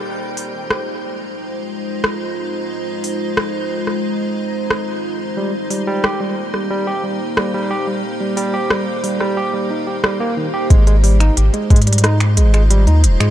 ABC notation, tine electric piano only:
X:1
M:4/4
L:1/16
Q:1/4=90
K:Ab
V:1 name="Tine electric piano" clef=bass
z16 | z16 | G, z G, G, G G, z G, G, G G, z G, G, G G, | z G, G, G G, z G, G, G G, E G G, B, E, G |
A, A, G, E z A, A, G, E z A, A, G, E z A, |]